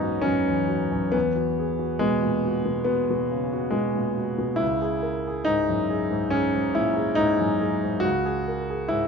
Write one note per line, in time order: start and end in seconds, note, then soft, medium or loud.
0.00 0.48 E2 soft
0.00 0.25 F#2 soft
0.00 1.16 G#2 soft
0.00 1.12 B3 medium
0.00 0.22 C#4 medium
0.00 0.25 D#4 medium
0.00 0.03 F#4 soft
0.00 0.39 F#4 soft
0.00 1.16 G#4 soft
0.22 0.61 F#2 soft
0.22 1.12 C#4 medium
0.48 0.70 E2 soft
0.68 1.05 F#4 soft
0.92 1.14 F#2 soft
1.12 2.83 E2 medium
1.12 2.00 B3 medium
1.35 1.71 F#4 soft
1.59 1.80 G#4 soft
1.79 2.14 F#4 soft
1.99 2.36 B2 soft
1.99 2.87 G#3 medium
2.22 2.44 A#2 soft
2.45 2.79 F#4 soft
2.65 3.00 B2 soft
2.84 3.72 B3 medium
2.84 3.21 F#4 soft
3.10 3.44 B2 soft
3.31 3.53 C#3 soft
3.53 3.87 F#4 soft
3.70 4.08 B2 soft
3.70 4.16 G#3 medium
3.95 4.17 A#2 soft
4.17 4.52 F#4 soft
4.38 4.61 B2 soft
4.56 6.28 C#2 medium
4.56 5.46 E4 medium
4.82 5.17 G#4 soft
5.02 5.25 A#4 soft
5.28 5.62 G#4 soft
5.45 5.82 G#2 soft
5.45 6.32 D#4 loud
5.69 5.91 F#2 soft
5.90 6.25 G#4 soft
6.11 6.46 G#2 soft
6.30 6.75 C#4 medium
6.30 6.68 G#4 soft
6.55 6.90 G#2 soft
6.75 6.98 A#2 soft
6.75 7.19 E4 medium
6.96 7.32 G#4 soft
7.15 7.53 G#2 medium
7.15 8.03 D#4 loud
7.39 7.62 F#2 soft
7.61 7.96 G#4 soft
7.83 8.05 G#2 soft
8.00 9.08 C#2 medium
8.00 8.88 F#4 loud
8.26 8.60 G#4 soft
8.48 8.69 A#4 soft
8.70 9.04 G#4 soft
8.88 9.08 G#2 soft
8.88 9.08 E4 medium